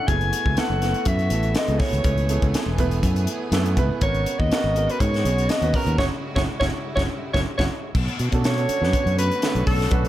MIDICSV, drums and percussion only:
0, 0, Header, 1, 2, 480
1, 0, Start_track
1, 0, Tempo, 491803
1, 84, Time_signature, 4, 2, 24, 8
1, 9843, End_track
2, 0, Start_track
2, 0, Title_t, "Drums"
2, 78, Note_on_c, 9, 42, 80
2, 80, Note_on_c, 9, 36, 102
2, 175, Note_off_c, 9, 42, 0
2, 177, Note_off_c, 9, 36, 0
2, 204, Note_on_c, 9, 42, 33
2, 302, Note_off_c, 9, 42, 0
2, 321, Note_on_c, 9, 42, 63
2, 418, Note_off_c, 9, 42, 0
2, 446, Note_on_c, 9, 36, 74
2, 544, Note_off_c, 9, 36, 0
2, 554, Note_on_c, 9, 42, 72
2, 565, Note_on_c, 9, 38, 97
2, 652, Note_off_c, 9, 42, 0
2, 663, Note_off_c, 9, 38, 0
2, 799, Note_on_c, 9, 42, 52
2, 810, Note_on_c, 9, 38, 30
2, 897, Note_off_c, 9, 42, 0
2, 907, Note_off_c, 9, 38, 0
2, 921, Note_on_c, 9, 42, 34
2, 1019, Note_off_c, 9, 42, 0
2, 1029, Note_on_c, 9, 42, 74
2, 1035, Note_on_c, 9, 36, 73
2, 1126, Note_off_c, 9, 42, 0
2, 1133, Note_off_c, 9, 36, 0
2, 1160, Note_on_c, 9, 42, 33
2, 1258, Note_off_c, 9, 42, 0
2, 1271, Note_on_c, 9, 42, 57
2, 1369, Note_off_c, 9, 42, 0
2, 1394, Note_on_c, 9, 42, 32
2, 1492, Note_off_c, 9, 42, 0
2, 1509, Note_on_c, 9, 42, 66
2, 1519, Note_on_c, 9, 38, 96
2, 1606, Note_off_c, 9, 42, 0
2, 1617, Note_off_c, 9, 38, 0
2, 1638, Note_on_c, 9, 42, 39
2, 1736, Note_off_c, 9, 42, 0
2, 1752, Note_on_c, 9, 46, 76
2, 1755, Note_on_c, 9, 36, 84
2, 1763, Note_on_c, 9, 38, 30
2, 1850, Note_off_c, 9, 46, 0
2, 1852, Note_off_c, 9, 36, 0
2, 1860, Note_off_c, 9, 38, 0
2, 1884, Note_on_c, 9, 42, 35
2, 1982, Note_off_c, 9, 42, 0
2, 1992, Note_on_c, 9, 42, 77
2, 1996, Note_on_c, 9, 36, 92
2, 2090, Note_off_c, 9, 42, 0
2, 2094, Note_off_c, 9, 36, 0
2, 2123, Note_on_c, 9, 42, 34
2, 2221, Note_off_c, 9, 42, 0
2, 2235, Note_on_c, 9, 42, 57
2, 2333, Note_off_c, 9, 42, 0
2, 2365, Note_on_c, 9, 36, 76
2, 2367, Note_on_c, 9, 42, 38
2, 2463, Note_off_c, 9, 36, 0
2, 2464, Note_off_c, 9, 42, 0
2, 2481, Note_on_c, 9, 42, 85
2, 2491, Note_on_c, 9, 38, 95
2, 2578, Note_off_c, 9, 42, 0
2, 2589, Note_off_c, 9, 38, 0
2, 2717, Note_on_c, 9, 42, 55
2, 2718, Note_on_c, 9, 36, 68
2, 2815, Note_off_c, 9, 42, 0
2, 2816, Note_off_c, 9, 36, 0
2, 2844, Note_on_c, 9, 42, 35
2, 2941, Note_off_c, 9, 42, 0
2, 2958, Note_on_c, 9, 36, 69
2, 2958, Note_on_c, 9, 42, 84
2, 3055, Note_off_c, 9, 36, 0
2, 3055, Note_off_c, 9, 42, 0
2, 3085, Note_on_c, 9, 42, 39
2, 3182, Note_off_c, 9, 42, 0
2, 3193, Note_on_c, 9, 42, 60
2, 3290, Note_off_c, 9, 42, 0
2, 3436, Note_on_c, 9, 42, 79
2, 3447, Note_on_c, 9, 38, 91
2, 3534, Note_off_c, 9, 42, 0
2, 3544, Note_off_c, 9, 38, 0
2, 3568, Note_on_c, 9, 42, 43
2, 3666, Note_off_c, 9, 42, 0
2, 3679, Note_on_c, 9, 36, 77
2, 3679, Note_on_c, 9, 42, 66
2, 3777, Note_off_c, 9, 36, 0
2, 3777, Note_off_c, 9, 42, 0
2, 3916, Note_on_c, 9, 42, 77
2, 3920, Note_on_c, 9, 36, 106
2, 4014, Note_off_c, 9, 42, 0
2, 4018, Note_off_c, 9, 36, 0
2, 4046, Note_on_c, 9, 42, 38
2, 4143, Note_off_c, 9, 42, 0
2, 4161, Note_on_c, 9, 42, 63
2, 4259, Note_off_c, 9, 42, 0
2, 4291, Note_on_c, 9, 36, 67
2, 4388, Note_off_c, 9, 36, 0
2, 4407, Note_on_c, 9, 42, 76
2, 4418, Note_on_c, 9, 38, 106
2, 4504, Note_off_c, 9, 42, 0
2, 4515, Note_off_c, 9, 38, 0
2, 4645, Note_on_c, 9, 42, 48
2, 4742, Note_off_c, 9, 42, 0
2, 4778, Note_on_c, 9, 42, 37
2, 4876, Note_off_c, 9, 42, 0
2, 4884, Note_on_c, 9, 36, 80
2, 4885, Note_on_c, 9, 42, 76
2, 4981, Note_off_c, 9, 36, 0
2, 4982, Note_off_c, 9, 42, 0
2, 5018, Note_on_c, 9, 42, 31
2, 5029, Note_on_c, 9, 38, 30
2, 5116, Note_off_c, 9, 42, 0
2, 5126, Note_off_c, 9, 38, 0
2, 5128, Note_on_c, 9, 42, 58
2, 5226, Note_off_c, 9, 42, 0
2, 5255, Note_on_c, 9, 42, 35
2, 5352, Note_off_c, 9, 42, 0
2, 5360, Note_on_c, 9, 42, 63
2, 5371, Note_on_c, 9, 38, 92
2, 5458, Note_off_c, 9, 42, 0
2, 5469, Note_off_c, 9, 38, 0
2, 5487, Note_on_c, 9, 42, 41
2, 5584, Note_off_c, 9, 42, 0
2, 5598, Note_on_c, 9, 46, 75
2, 5601, Note_on_c, 9, 36, 81
2, 5696, Note_off_c, 9, 46, 0
2, 5698, Note_off_c, 9, 36, 0
2, 5729, Note_on_c, 9, 42, 35
2, 5827, Note_off_c, 9, 42, 0
2, 5841, Note_on_c, 9, 36, 80
2, 5850, Note_on_c, 9, 38, 93
2, 5938, Note_off_c, 9, 36, 0
2, 5948, Note_off_c, 9, 38, 0
2, 6210, Note_on_c, 9, 36, 97
2, 6220, Note_on_c, 9, 38, 100
2, 6308, Note_off_c, 9, 36, 0
2, 6318, Note_off_c, 9, 38, 0
2, 6450, Note_on_c, 9, 36, 82
2, 6463, Note_on_c, 9, 38, 90
2, 6547, Note_off_c, 9, 36, 0
2, 6561, Note_off_c, 9, 38, 0
2, 6801, Note_on_c, 9, 36, 85
2, 6813, Note_on_c, 9, 38, 79
2, 6899, Note_off_c, 9, 36, 0
2, 6911, Note_off_c, 9, 38, 0
2, 7168, Note_on_c, 9, 36, 74
2, 7177, Note_on_c, 9, 38, 71
2, 7265, Note_off_c, 9, 36, 0
2, 7275, Note_off_c, 9, 38, 0
2, 7407, Note_on_c, 9, 36, 89
2, 7416, Note_on_c, 9, 38, 96
2, 7505, Note_off_c, 9, 36, 0
2, 7513, Note_off_c, 9, 38, 0
2, 7757, Note_on_c, 9, 49, 83
2, 7758, Note_on_c, 9, 36, 100
2, 7855, Note_off_c, 9, 49, 0
2, 7856, Note_off_c, 9, 36, 0
2, 7886, Note_on_c, 9, 42, 37
2, 7984, Note_off_c, 9, 42, 0
2, 7996, Note_on_c, 9, 42, 57
2, 8093, Note_off_c, 9, 42, 0
2, 8123, Note_on_c, 9, 42, 41
2, 8125, Note_on_c, 9, 36, 71
2, 8220, Note_off_c, 9, 42, 0
2, 8223, Note_off_c, 9, 36, 0
2, 8240, Note_on_c, 9, 42, 74
2, 8251, Note_on_c, 9, 38, 108
2, 8337, Note_off_c, 9, 42, 0
2, 8348, Note_off_c, 9, 38, 0
2, 8371, Note_on_c, 9, 42, 38
2, 8469, Note_off_c, 9, 42, 0
2, 8481, Note_on_c, 9, 42, 58
2, 8578, Note_off_c, 9, 42, 0
2, 8624, Note_on_c, 9, 38, 34
2, 8720, Note_on_c, 9, 36, 80
2, 8722, Note_off_c, 9, 38, 0
2, 8722, Note_on_c, 9, 42, 73
2, 8817, Note_off_c, 9, 36, 0
2, 8820, Note_off_c, 9, 42, 0
2, 8851, Note_on_c, 9, 42, 29
2, 8949, Note_off_c, 9, 42, 0
2, 8965, Note_on_c, 9, 42, 61
2, 9063, Note_off_c, 9, 42, 0
2, 9091, Note_on_c, 9, 42, 31
2, 9188, Note_off_c, 9, 42, 0
2, 9196, Note_on_c, 9, 42, 71
2, 9207, Note_on_c, 9, 38, 85
2, 9293, Note_off_c, 9, 42, 0
2, 9304, Note_off_c, 9, 38, 0
2, 9326, Note_on_c, 9, 42, 39
2, 9423, Note_off_c, 9, 42, 0
2, 9435, Note_on_c, 9, 46, 71
2, 9438, Note_on_c, 9, 36, 79
2, 9532, Note_off_c, 9, 46, 0
2, 9536, Note_off_c, 9, 36, 0
2, 9574, Note_on_c, 9, 38, 30
2, 9671, Note_on_c, 9, 42, 75
2, 9672, Note_off_c, 9, 38, 0
2, 9677, Note_on_c, 9, 36, 107
2, 9769, Note_off_c, 9, 42, 0
2, 9775, Note_off_c, 9, 36, 0
2, 9807, Note_on_c, 9, 42, 35
2, 9843, Note_off_c, 9, 42, 0
2, 9843, End_track
0, 0, End_of_file